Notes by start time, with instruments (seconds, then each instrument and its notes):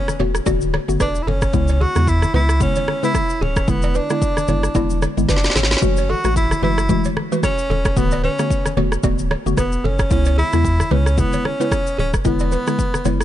Already playing: tenor saxophone C#4, downlifter
0.08 cross-stick, high conga, shaker
0.19 sub bass E1, synth pluck D3 A3 B3 F#4, balafon C#5, high conga, low conga
0.35 cross-stick, shaker
0.46 sub bass D1, synth pluck D3 A3 B3 F#4, balafon D5, kick, low conga, shaker
0.61 high conga, shaker
0.74 balafon C#5, cross-stick, high conga
0.88 sub bass F#1, synth pluck D3 A3 B3 F#4, shaker
1.00 sub bass E1, tenor saxophone D4, balafon B4, kick, cross-stick, high conga, shaker
1.15 shaker
1.22 tenor saxophone E4
1.27 sub bass F#1, tenor saxophone C#4, balafon A4, high conga, low conga
1.42 kick, cross-stick, shaker
1.53 sub bass C#2, synth pluck C#3 G#3 B3 E4, kick, low conga, shaker
1.68 balafon C#5, shaker
1.81 tenor saxophone F#4, balafon G#4, high conga
1.95 sub bass E2, synth pluck C#3 G#3 B3 E4, cross-stick, shaker
2.07 tenor saxophone E4, kick, shaker
2.22 cross-stick, high conga, shaker
2.34 sub bass C#2, synth pluck C#3 G#3 B3 E4, tenor saxophone E4, balafon B4, high conga, low conga
2.49 cross-stick, shaker
2.60 synth pluck C#3 G#3 B3 E4, tenor saxophone C#4, kick, low conga, shaker
2.76 balafon C#5, high conga, shaker
2.88 cross-stick, high conga
3.03 synth pluck C#3 G#3 B3 E4, tenor saxophone E4, balafon B4, shaker
3.15 kick, cross-stick, high conga, shaker
3.30 shaker
3.41 sub bass D1, tenor saxophone C#4, balafon G#4, high conga, low conga
3.56 kick, cross-stick, shaker
3.68 sub bass E1, synth pluck D3 G#3 B3 E4, tenor saxophone B3, kick, low conga, shaker
3.82 balafon D5, shaker
3.95 tenor saxophone D4, balafon B4, high conga, shaker
4.10 synth pluck D3 G#3 B3 E4, cross-stick, shaker
4.22 kick, shaker
4.37 cross-stick, high conga, shaker
4.48 sub bass F#1, synth pluck D3 G#3 B3 E4, balafon C#5, high conga, low conga, shaker
4.63 cross-stick, shaker
4.75 sub bass E1, synth pluck D3 G#3 B3 E4, balafon D5, kick, low conga, shaker
4.90 high conga, shaker
5.02 balafon C#5, cross-stick, high conga, shaker
5.17 sub bass G#1, synth pluck D3 G#3 B3 E4, shaker
5.29 sub bass F#1, tenor saxophone D4, balafon B4, kick, snare, high conga, shaker
5.36 snare
5.44 snare, shaker
5.50 snare
5.55 sub bass G#1, tenor saxophone C#4, balafon G#4, snare, high conga, low conga, shaker
5.63 snare
5.71 snare, shaker
5.77 snare
5.82 sub bass F#1, synth pluck E3 G#3 A3 F#4, kick, low conga, shaker
5.97 balafon C#5, shaker
6.10 tenor saxophone F#4, balafon A4, high conga
6.24 sub bass A1, synth pluck E3 G#3 A3 F#4, cross-stick, shaker
6.36 tenor saxophone E4, kick, shaker
6.51 cross-stick, high conga, shaker
6.62 sub bass F#1, synth pluck E3 G#3 A3 F#4, tenor saxophone E4, balafon B4, high conga, low conga
6.78 cross-stick, shaker
6.89 synth pluck E3 G#3 A3 F#4, kick, low conga, shaker
7.04 balafon C#5, high conga, shaker
7.17 cross-stick, high conga
7.32 synth pluck E3 G#3 A3 F#4, balafon B4, shaker
7.43 tenor saxophone C#4, kick, cross-stick, high conga, shaker
7.58 shaker
7.70 sub bass E1, balafon A4, high conga, low conga
7.85 kick, cross-stick, shaker
7.97 sub bass D1, synth pluck D3 A3 B3 F#4, tenor saxophone B3, kick, low conga, shaker
8.11 balafon D5, shaker
8.24 tenor saxophone C#4, balafon B4, high conga
8.39 synth pluck D3 A3 B3 F#4, cross-stick, shaker
8.50 kick, shaker
8.66 cross-stick, high conga, shaker
8.77 sub bass E1, synth pluck D3 A3 B3 F#4, balafon C#5, high conga, low conga
8.92 cross-stick, shaker
9.03 sub bass D1, synth pluck D3 A3 B3 F#4, balafon D5, kick, low conga, shaker
9.19 high conga, shaker
9.31 balafon C#5, cross-stick, high conga
9.46 sub bass F#1, synth pluck D3 A3 B3 F#4, shaker
9.57 sub bass E1, tenor saxophone B3, balafon B4, kick, cross-stick, high conga, shaker
9.72 shaker
9.84 sub bass F#1, tenor saxophone C#4, balafon A4, high conga, low conga
9.99 kick, cross-stick, shaker
10.11 sub bass C#2, synth pluck C#3 G#3 B3 E4, tenor saxophone C#4, kick, low conga, shaker
10.25 balafon C#5, shaker
10.38 tenor saxophone E4, balafon G#4, high conga
10.53 sub bass E2, synth pluck C#3 G#3 B3 E4, cross-stick, shaker
10.65 kick, shaker
10.80 cross-stick, high conga, shaker
10.91 sub bass C#2, synth pluck C#3 G#3 B3 E4, tenor saxophone C#4, balafon B4, high conga, low conga
11.06 cross-stick, shaker
11.18 synth pluck C#3 G#3 B3 E4, tenor saxophone B3, kick, low conga, shaker
11.33 balafon C#5, high conga, shaker
11.45 tenor saxophone C#4, cross-stick, high conga
11.60 synth pluck C#3 G#3 B3 E4, balafon B4, shaker
11.72 kick, cross-stick, high conga, shaker
11.87 shaker
11.98 sub bass D1, tenor saxophone C#4, balafon G#4, high conga, low conga
12.13 kick, cross-stick, shaker
12.25 sub bass E1, synth pluck D3 G#3 B3 E4, tenor saxophone B3, kick, low conga, shaker
12.39 balafon D5, shaker
12.52 balafon B4, high conga, shaker
12.67 synth pluck D3 G#3 B3 E4, cross-stick, shaker
12.79 kick, shaker
12.94 cross-stick, high conga, shaker
13.05 sub bass F#1, synth pluck D3 G#3 B3 E4, balafon C#5, high conga, low conga, shaker
13.21 cross-stick, shaker